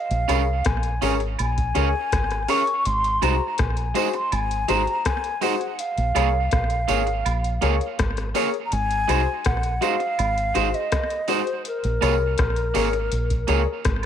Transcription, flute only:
0, 0, Header, 1, 2, 480
1, 0, Start_track
1, 0, Key_signature, -5, "minor"
1, 0, Tempo, 733227
1, 1866, Time_signature, 4, 2, 24, 8
1, 9202, End_track
2, 0, Start_track
2, 0, Title_t, "Flute"
2, 0, Program_c, 0, 73
2, 0, Note_on_c, 0, 77, 95
2, 433, Note_on_c, 0, 80, 82
2, 443, Note_off_c, 0, 77, 0
2, 733, Note_off_c, 0, 80, 0
2, 917, Note_on_c, 0, 80, 97
2, 1633, Note_on_c, 0, 85, 93
2, 1643, Note_off_c, 0, 80, 0
2, 1873, Note_on_c, 0, 84, 109
2, 1883, Note_off_c, 0, 85, 0
2, 2114, Note_on_c, 0, 82, 93
2, 2124, Note_off_c, 0, 84, 0
2, 2354, Note_on_c, 0, 80, 76
2, 2364, Note_off_c, 0, 82, 0
2, 2717, Note_on_c, 0, 84, 86
2, 2727, Note_off_c, 0, 80, 0
2, 2836, Note_on_c, 0, 80, 96
2, 2846, Note_off_c, 0, 84, 0
2, 3073, Note_on_c, 0, 82, 97
2, 3083, Note_off_c, 0, 80, 0
2, 3316, Note_on_c, 0, 80, 88
2, 3326, Note_off_c, 0, 82, 0
2, 3557, Note_on_c, 0, 78, 82
2, 3567, Note_off_c, 0, 80, 0
2, 3795, Note_on_c, 0, 77, 97
2, 3805, Note_off_c, 0, 78, 0
2, 5231, Note_off_c, 0, 77, 0
2, 5667, Note_on_c, 0, 82, 83
2, 5714, Note_on_c, 0, 80, 117
2, 5724, Note_off_c, 0, 82, 0
2, 6194, Note_on_c, 0, 78, 96
2, 6204, Note_off_c, 0, 80, 0
2, 6433, Note_on_c, 0, 77, 105
2, 6443, Note_off_c, 0, 78, 0
2, 7034, Note_on_c, 0, 75, 95
2, 7044, Note_off_c, 0, 77, 0
2, 7395, Note_on_c, 0, 72, 82
2, 7405, Note_off_c, 0, 75, 0
2, 7631, Note_off_c, 0, 72, 0
2, 7638, Note_on_c, 0, 70, 88
2, 9046, Note_off_c, 0, 70, 0
2, 9202, End_track
0, 0, End_of_file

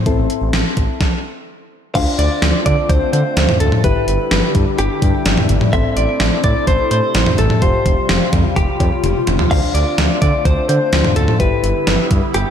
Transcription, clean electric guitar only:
0, 0, Header, 1, 2, 480
1, 0, Start_track
1, 0, Tempo, 472441
1, 61, Time_signature, 4, 2, 24, 8
1, 12703, End_track
2, 0, Start_track
2, 0, Title_t, "Clean electric guitar"
2, 0, Program_c, 0, 27
2, 0, Note_on_c, 0, 72, 85
2, 1461, Note_off_c, 0, 72, 0
2, 1983, Note_on_c, 0, 77, 113
2, 2217, Note_off_c, 0, 77, 0
2, 2221, Note_on_c, 0, 74, 102
2, 2688, Note_off_c, 0, 74, 0
2, 2700, Note_on_c, 0, 74, 98
2, 2941, Note_on_c, 0, 72, 96
2, 2948, Note_off_c, 0, 74, 0
2, 3164, Note_off_c, 0, 72, 0
2, 3179, Note_on_c, 0, 72, 97
2, 3655, Note_off_c, 0, 72, 0
2, 3659, Note_on_c, 0, 69, 85
2, 3897, Note_off_c, 0, 69, 0
2, 3901, Note_on_c, 0, 71, 84
2, 4581, Note_off_c, 0, 71, 0
2, 4863, Note_on_c, 0, 67, 111
2, 5541, Note_off_c, 0, 67, 0
2, 5821, Note_on_c, 0, 76, 113
2, 6057, Note_off_c, 0, 76, 0
2, 6061, Note_on_c, 0, 74, 106
2, 6530, Note_off_c, 0, 74, 0
2, 6542, Note_on_c, 0, 74, 106
2, 6778, Note_off_c, 0, 74, 0
2, 6783, Note_on_c, 0, 72, 100
2, 7010, Note_off_c, 0, 72, 0
2, 7022, Note_on_c, 0, 72, 96
2, 7504, Note_on_c, 0, 69, 86
2, 7516, Note_off_c, 0, 72, 0
2, 7743, Note_on_c, 0, 72, 86
2, 7750, Note_off_c, 0, 69, 0
2, 8421, Note_off_c, 0, 72, 0
2, 8701, Note_on_c, 0, 67, 105
2, 9380, Note_off_c, 0, 67, 0
2, 9661, Note_on_c, 0, 77, 112
2, 9897, Note_off_c, 0, 77, 0
2, 9901, Note_on_c, 0, 74, 103
2, 10367, Note_off_c, 0, 74, 0
2, 10380, Note_on_c, 0, 74, 97
2, 10620, Note_on_c, 0, 72, 99
2, 10628, Note_off_c, 0, 74, 0
2, 10848, Note_off_c, 0, 72, 0
2, 10860, Note_on_c, 0, 72, 97
2, 11335, Note_off_c, 0, 72, 0
2, 11339, Note_on_c, 0, 69, 85
2, 11575, Note_off_c, 0, 69, 0
2, 11580, Note_on_c, 0, 71, 86
2, 12260, Note_off_c, 0, 71, 0
2, 12542, Note_on_c, 0, 67, 108
2, 12703, Note_off_c, 0, 67, 0
2, 12703, End_track
0, 0, End_of_file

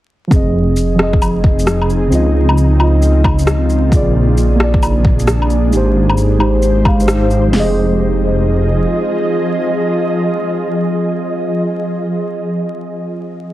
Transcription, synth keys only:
0, 0, Header, 1, 2, 480
1, 0, Start_track
1, 0, Key_signature, -4, "minor"
1, 0, Tempo, 451128
1, 335, Time_signature, 4, 2, 24, 8
1, 14398, End_track
2, 0, Start_track
2, 0, Title_t, "Synth keys"
2, 0, Program_c, 0, 88
2, 291, Note_on_c, 0, 53, 77
2, 320, Note_on_c, 0, 60, 67
2, 349, Note_on_c, 0, 68, 65
2, 378, Note_on_c, 0, 75, 81
2, 544, Control_c, 0, 64, 127
2, 1000, Note_off_c, 0, 53, 0
2, 1013, Note_on_c, 0, 53, 77
2, 1027, Note_off_c, 0, 60, 0
2, 1041, Note_off_c, 0, 68, 0
2, 1043, Note_on_c, 0, 60, 71
2, 1055, Note_off_c, 0, 75, 0
2, 1068, Note_on_c, 0, 68, 70
2, 1095, Note_on_c, 0, 75, 88
2, 2205, Note_on_c, 0, 49, 72
2, 2213, Note_off_c, 0, 53, 0
2, 2220, Note_off_c, 0, 60, 0
2, 2232, Note_on_c, 0, 60, 68
2, 2241, Note_off_c, 0, 68, 0
2, 2254, Note_off_c, 0, 75, 0
2, 2261, Note_on_c, 0, 65, 67
2, 2270, Control_c, 0, 64, 0
2, 2288, Note_on_c, 0, 75, 81
2, 2475, Control_c, 0, 64, 127
2, 2918, Note_off_c, 0, 49, 0
2, 2930, Note_on_c, 0, 49, 83
2, 2943, Note_off_c, 0, 60, 0
2, 2957, Note_off_c, 0, 65, 0
2, 2962, Note_on_c, 0, 60, 71
2, 2970, Note_off_c, 0, 75, 0
2, 2989, Note_on_c, 0, 65, 73
2, 3018, Note_on_c, 0, 75, 89
2, 4132, Note_off_c, 0, 49, 0
2, 4133, Note_on_c, 0, 58, 75
2, 4147, Note_off_c, 0, 60, 0
2, 4147, Note_off_c, 0, 65, 0
2, 4160, Note_on_c, 0, 65, 69
2, 4176, Note_off_c, 0, 75, 0
2, 4187, Control_c, 0, 64, 0
2, 4191, Note_on_c, 0, 68, 70
2, 4216, Note_on_c, 0, 74, 88
2, 4348, Control_c, 0, 64, 127
2, 4835, Note_off_c, 0, 58, 0
2, 4848, Note_on_c, 0, 58, 77
2, 4862, Note_off_c, 0, 65, 0
2, 4875, Note_on_c, 0, 65, 73
2, 4882, Note_off_c, 0, 68, 0
2, 4895, Note_off_c, 0, 74, 0
2, 4904, Note_on_c, 0, 68, 74
2, 4932, Note_on_c, 0, 74, 90
2, 6047, Note_on_c, 0, 56, 78
2, 6051, Note_off_c, 0, 58, 0
2, 6064, Note_off_c, 0, 65, 0
2, 6077, Note_on_c, 0, 63, 70
2, 6078, Note_off_c, 0, 68, 0
2, 6092, Note_off_c, 0, 74, 0
2, 6104, Note_on_c, 0, 67, 70
2, 6109, Control_c, 0, 64, 0
2, 6134, Note_on_c, 0, 72, 87
2, 6270, Control_c, 0, 64, 127
2, 6770, Note_off_c, 0, 56, 0
2, 6785, Note_off_c, 0, 63, 0
2, 6789, Note_on_c, 0, 56, 81
2, 6799, Note_off_c, 0, 67, 0
2, 6803, Note_on_c, 0, 63, 73
2, 6814, Note_off_c, 0, 72, 0
2, 6818, Note_on_c, 0, 67, 73
2, 6831, Note_on_c, 0, 72, 90
2, 7264, Note_off_c, 0, 56, 0
2, 7271, Note_off_c, 0, 63, 0
2, 7276, Note_on_c, 0, 56, 76
2, 7279, Note_off_c, 0, 67, 0
2, 7285, Note_off_c, 0, 72, 0
2, 7289, Note_on_c, 0, 63, 70
2, 7304, Note_on_c, 0, 67, 68
2, 7319, Note_on_c, 0, 77, 81
2, 7402, Note_off_c, 0, 56, 0
2, 7408, Note_off_c, 0, 63, 0
2, 7416, Note_off_c, 0, 67, 0
2, 7423, Note_off_c, 0, 77, 0
2, 7427, Note_on_c, 0, 56, 79
2, 7442, Note_on_c, 0, 63, 71
2, 7457, Note_on_c, 0, 67, 70
2, 7469, Note_on_c, 0, 72, 86
2, 7532, Note_off_c, 0, 56, 0
2, 7539, Note_off_c, 0, 63, 0
2, 7547, Note_off_c, 0, 67, 0
2, 7553, Note_off_c, 0, 72, 0
2, 7952, Note_on_c, 0, 53, 87
2, 7997, Note_on_c, 0, 60, 73
2, 8029, Control_c, 0, 64, 0
2, 8041, Note_on_c, 0, 68, 79
2, 8079, Note_on_c, 0, 75, 95
2, 8218, Control_c, 0, 64, 127
2, 13110, Note_off_c, 0, 53, 0
2, 13155, Note_off_c, 0, 60, 0
2, 13199, Note_off_c, 0, 68, 0
2, 13237, Note_off_c, 0, 75, 0
2, 14398, End_track
0, 0, End_of_file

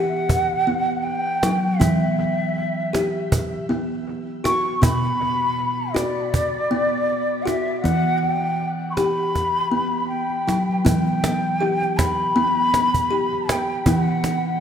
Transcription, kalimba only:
0, 0, Header, 1, 2, 480
1, 0, Start_track
1, 0, Key_signature, 1, "minor"
1, 0, Tempo, 753769
1, 1151, Time_signature, 4, 2, 24, 8
1, 9298, End_track
2, 0, Start_track
2, 0, Title_t, "Kalimba"
2, 0, Program_c, 0, 108
2, 0, Note_on_c, 0, 52, 74
2, 0, Note_on_c, 0, 67, 69
2, 428, Note_on_c, 0, 59, 63
2, 431, Note_off_c, 0, 67, 0
2, 909, Note_off_c, 0, 59, 0
2, 912, Note_on_c, 0, 54, 67
2, 1123, Note_off_c, 0, 52, 0
2, 1145, Note_on_c, 0, 59, 69
2, 1148, Note_on_c, 0, 52, 69
2, 1152, Note_off_c, 0, 54, 0
2, 1628, Note_off_c, 0, 59, 0
2, 1868, Note_on_c, 0, 67, 62
2, 2350, Note_off_c, 0, 67, 0
2, 2352, Note_on_c, 0, 59, 66
2, 2829, Note_on_c, 0, 66, 74
2, 2832, Note_off_c, 0, 59, 0
2, 3046, Note_off_c, 0, 52, 0
2, 3067, Note_on_c, 0, 47, 67
2, 3069, Note_on_c, 0, 59, 72
2, 3071, Note_off_c, 0, 66, 0
2, 3551, Note_off_c, 0, 59, 0
2, 3786, Note_on_c, 0, 66, 72
2, 4269, Note_off_c, 0, 66, 0
2, 4272, Note_on_c, 0, 59, 74
2, 4748, Note_on_c, 0, 66, 74
2, 4752, Note_off_c, 0, 59, 0
2, 4964, Note_off_c, 0, 47, 0
2, 4990, Note_off_c, 0, 66, 0
2, 4991, Note_on_c, 0, 52, 67
2, 4993, Note_on_c, 0, 59, 63
2, 5472, Note_off_c, 0, 59, 0
2, 5712, Note_on_c, 0, 67, 70
2, 6187, Note_on_c, 0, 59, 62
2, 6192, Note_off_c, 0, 67, 0
2, 6669, Note_off_c, 0, 59, 0
2, 6671, Note_on_c, 0, 54, 65
2, 6885, Note_off_c, 0, 52, 0
2, 6908, Note_on_c, 0, 59, 74
2, 6910, Note_on_c, 0, 52, 65
2, 6911, Note_off_c, 0, 54, 0
2, 7389, Note_off_c, 0, 59, 0
2, 7391, Note_on_c, 0, 67, 65
2, 7869, Note_on_c, 0, 59, 86
2, 7870, Note_off_c, 0, 67, 0
2, 8346, Note_on_c, 0, 67, 60
2, 8349, Note_off_c, 0, 59, 0
2, 8803, Note_off_c, 0, 52, 0
2, 8827, Note_off_c, 0, 67, 0
2, 8828, Note_on_c, 0, 59, 82
2, 8830, Note_on_c, 0, 52, 70
2, 9298, Note_off_c, 0, 52, 0
2, 9298, Note_off_c, 0, 59, 0
2, 9298, End_track
0, 0, End_of_file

